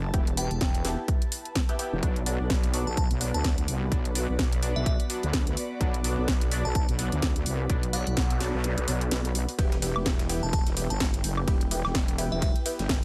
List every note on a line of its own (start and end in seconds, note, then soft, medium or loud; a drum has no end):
0.00 0.12 F#1 loud
0.00 3.05 E4 medium
0.00 13.04 B4 medium
0.00 3.62 A5 medium
0.14 0.49 E1 loud
0.14 0.22 B3 medium
0.14 0.22 E4 medium
0.14 0.22 G4 medium
0.14 kick loud
0.14 closed hi-hat medium
0.27 closed hi-hat soft
0.37 0.46 B3 medium
0.37 0.46 E4 medium
0.37 0.46 G4 medium
0.37 0.85 G5 medium
0.37 open hi-hat loud
0.51 0.96 E1 loud
0.51 closed hi-hat soft
0.61 kick loud
0.61 snare loud
0.61 closed hi-hat medium
0.75 closed hi-hat soft
0.85 1.29 B3 medium
0.85 1.29 E4 medium
0.85 1.29 G4 medium
0.85 snare medium
0.85 open hi-hat loud
1.08 kick loud
1.08 closed hi-hat medium
1.22 closed hi-hat soft
1.32 open hi-hat loud
1.45 closed hi-hat soft
1.55 kick loud
1.55 snare loud
1.55 closed hi-hat medium
1.69 1.75 B3 medium
1.69 1.75 E4 medium
1.69 1.75 G4 loud
1.69 closed hi-hat soft
1.79 2.00 B3 medium
1.79 2.00 E4 medium
1.79 2.00 G4 loud
1.79 open hi-hat loud
1.93 2.01 E1 medium
2.03 2.38 B1 loud
2.03 2.16 F#3 medium
2.03 2.16 B3 medium
2.03 11.03 B3 medium
2.03 2.16 D4 loud
2.03 kick loud
2.03 closed hi-hat medium
2.12 9.59 F#4 medium
2.16 closed hi-hat soft
2.25 2.71 F#3 medium
2.25 2.71 B3 medium
2.25 2.71 D4 medium
2.25 11.44 D5 medium
2.25 open hi-hat loud
2.40 2.85 B1 medium
2.50 kick loud
2.50 snare loud
2.50 closed hi-hat medium
2.64 closed hi-hat soft
2.74 2.87 F#3 medium
2.74 2.87 B3 medium
2.74 2.87 D4 loud
2.74 open hi-hat loud
2.87 3.09 B1 medium
2.87 2.94 A5 medium
2.97 3.06 A5 medium
2.97 kick loud
2.97 closed hi-hat medium
3.11 3.32 B1 medium
3.11 closed hi-hat soft
3.21 3.34 F#3 medium
3.21 3.34 B3 medium
3.21 3.34 D4 medium
3.21 open hi-hat loud
3.34 3.66 D2 loud
3.34 3.45 A5 medium
3.34 closed hi-hat soft
3.44 kick loud
3.44 snare loud
3.44 closed hi-hat medium
3.58 closed hi-hat soft
3.68 3.90 C2 loud
3.68 open hi-hat loud
3.92 4.27 B1 medium
3.92 4.00 F#3 medium
3.92 4.00 B3 medium
3.92 4.00 D4 medium
3.92 kick loud
3.92 closed hi-hat medium
4.05 closed hi-hat soft
4.15 4.24 F#3 medium
4.15 4.24 B3 medium
4.15 4.24 D4 medium
4.15 open hi-hat loud
4.29 4.74 B1 medium
4.39 kick loud
4.39 snare loud
4.39 closed hi-hat medium
4.53 closed hi-hat medium
4.63 5.07 F#3 medium
4.63 5.07 B3 medium
4.63 5.07 D4 loud
4.63 open hi-hat loud
4.76 4.98 B1 medium
4.76 4.83 E5 medium
4.86 4.95 E5 medium
4.86 kick loud
4.86 closed hi-hat medium
5.00 closed hi-hat soft
5.10 5.23 F#3 medium
5.10 5.23 B3 medium
5.10 5.23 D4 medium
5.10 open hi-hat loud
5.23 5.55 D2 medium
5.23 closed hi-hat soft
5.33 kick medium
5.33 snare loud
5.33 closed hi-hat medium
5.47 closed hi-hat medium
5.57 open hi-hat loud
5.81 6.16 B1 loud
5.81 5.94 F#3 loud
5.81 5.94 B3 medium
5.81 5.94 D4 loud
5.81 kick loud
5.81 closed hi-hat medium
5.94 closed hi-hat medium
6.04 6.49 F#3 medium
6.04 6.49 B3 medium
6.04 6.49 D4 medium
6.04 open hi-hat loud
6.18 6.63 B1 medium
6.28 kick loud
6.28 snare loud
6.28 closed hi-hat medium
6.41 closed hi-hat medium
6.51 6.65 F#3 medium
6.51 6.65 B3 medium
6.51 6.65 D4 loud
6.51 open hi-hat loud
6.65 6.87 B1 loud
6.65 6.72 A5 medium
6.75 6.84 A5 medium
6.75 kick loud
6.75 closed hi-hat medium
6.89 7.10 B1 medium
6.89 closed hi-hat soft
6.99 7.12 F#3 medium
6.99 7.12 B3 medium
6.99 7.12 D4 medium
6.99 open hi-hat loud
7.12 7.44 D2 loud
7.12 closed hi-hat soft
7.22 kick medium
7.22 snare loud
7.22 closed hi-hat medium
7.36 closed hi-hat medium
7.46 7.68 C2 loud
7.46 open hi-hat loud
7.70 8.05 B1 loud
7.70 7.78 F#3 medium
7.70 7.78 B3 medium
7.70 7.78 D4 loud
7.70 kick loud
7.70 closed hi-hat medium
7.70 noise sweep medium
7.83 closed hi-hat medium
7.93 8.02 F#3 medium
7.93 8.02 B3 medium
7.93 8.01 D4 medium
7.93 8.41 F#5 medium
7.93 open hi-hat loud
8.07 8.52 B1 loud
8.07 closed hi-hat soft
8.17 kick loud
8.17 snare loud
8.17 closed hi-hat medium
8.30 closed hi-hat medium
8.41 8.85 F#3 medium
8.41 8.85 B3 medium
8.41 8.85 D4 medium
8.41 snare medium
8.41 open hi-hat loud
8.54 8.76 B1 medium
8.64 closed hi-hat medium
8.78 8.86 B1 medium
8.78 closed hi-hat medium
8.88 9.10 B1 medium
8.88 9.01 F#3 medium
8.88 9.01 B3 medium
8.88 9.01 D4 medium
8.88 open hi-hat loud
9.01 closed hi-hat soft
9.11 9.46 B1 medium
9.11 snare loud
9.11 closed hi-hat medium
9.25 closed hi-hat medium
9.35 open hi-hat loud
9.49 open hi-hat medium
9.59 9.94 E1 medium
9.59 9.72 B3 loud
9.59 9.72 E4 medium
9.59 13.04 E4 medium
9.59 9.72 G4 loud
9.59 kick loud
9.59 closed hi-hat medium
9.59 ride medium
9.72 snare medium
9.72 closed hi-hat medium
9.82 10.27 B3 medium
9.82 10.27 E4 medium
9.82 10.27 G4 medium
9.82 13.04 G5 medium
9.82 snare medium
9.82 open hi-hat loud
9.82 ride medium
9.96 10.41 E1 medium
9.96 high woodblock medium
10.06 kick loud
10.06 snare loud
10.06 closed hi-hat medium
10.06 ride medium
10.19 snare medium
10.19 closed hi-hat medium
10.29 10.43 B3 medium
10.29 10.43 E4 medium
10.29 10.43 G4 loud
10.29 open hi-hat loud
10.29 ride medium
10.43 10.64 E1 medium
10.43 10.49 A5 medium
10.53 10.62 A5 medium
10.53 kick loud
10.53 closed hi-hat medium
10.53 ride medium
10.67 10.88 E1 medium
10.67 snare soft
10.67 closed hi-hat medium
10.77 10.90 B3 medium
10.77 10.90 E4 medium
10.77 10.90 G4 medium
10.77 open hi-hat loud
10.77 ride medium
10.90 11.22 G1 medium
10.90 11.01 A5 medium
10.90 closed hi-hat soft
11.00 kick medium
11.00 snare loud
11.00 closed hi-hat medium
11.00 ride medium
11.14 closed hi-hat medium
11.24 11.46 F#1 loud
11.24 open hi-hat loud
11.24 ride medium
11.37 high woodblock medium
11.48 11.83 E1 loud
11.48 11.56 B3 medium
11.48 11.56 E4 medium
11.48 11.56 G4 medium
11.48 kick loud
11.48 closed hi-hat medium
11.48 ride medium
11.61 closed hi-hat medium
11.71 11.79 B3 medium
11.71 11.79 E4 medium
11.71 11.79 G4 medium
11.71 open hi-hat loud
11.71 ride medium
11.85 12.30 E1 medium
11.85 snare soft
11.85 high woodblock medium
11.95 kick loud
11.95 snare loud
11.95 closed hi-hat medium
11.95 ride medium
12.08 closed hi-hat medium
12.18 12.63 B3 medium
12.18 12.63 E4 medium
12.18 12.63 G4 medium
12.18 open hi-hat loud
12.18 ride medium
12.32 12.53 E1 medium
12.32 12.38 E5 medium
12.42 12.51 E5 medium
12.42 kick loud
12.42 closed hi-hat medium
12.42 ride medium
12.56 closed hi-hat soft
12.66 12.79 B3 medium
12.66 12.79 E4 medium
12.66 12.79 G4 medium
12.66 open hi-hat loud
12.66 ride medium
12.79 13.04 G1 loud
12.79 snare soft
12.79 closed hi-hat soft
12.89 kick loud
12.89 snare loud
12.89 closed hi-hat medium
12.89 ride medium